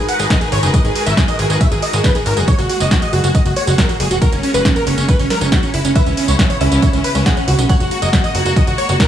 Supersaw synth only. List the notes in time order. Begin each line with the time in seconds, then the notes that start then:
0.08 F#5
0.19 G#4
0.30 D#5
0.41 G#4
0.52 C#5
0.63 G#4
0.74 D#5
0.85 G#4
0.96 G#4
1.06 E5
1.17 G#4
1.28 D#5
1.39 G#4
1.50 G#4
1.61 E5
1.72 G#4
1.83 D#5
1.94 G#4
2.04 B4
2.15 G#4
2.26 A#4
2.37 G#4
2.48 C#5
2.59 F#4
2.70 F#4
2.80 D#5
2.91 F#4
3.02 D#5
3.13 F#4
3.24 F#4
3.35 D#5
3.46 F#4
3.57 C#5
3.67 F#4
3.78 A#4
3.89 F#4
4.00 G#4
4.11 F#4
4.22 A#4
4.33 C#4
4.43 C#4
4.54 B4
4.65 C#4
4.76 A#4
4.87 C#4
4.98 C#4
5.09 B4
5.20 C#4
5.30 A#4
5.41 C#4
5.52 F#4
5.63 C#4
5.74 E4
5.85 C#4
5.96 B4
6.07 C#4
6.17 C#4
6.28 C#5
6.39 C#4
6.50 C#5
6.61 C#4
6.72 C#4
6.83 C#5
6.94 C#4
7.04 B4
7.15 C#4
7.26 G#4
7.37 C#4
7.48 F#4
7.59 C#4
7.70 C#5
7.81 F#4
7.91 F#4
8.02 D#5
8.13 F#4
8.24 D#5
8.35 F#4
8.45 F#4
8.56 D#5
8.67 F#4
8.78 C#5
8.89 F#4
9.00 A#4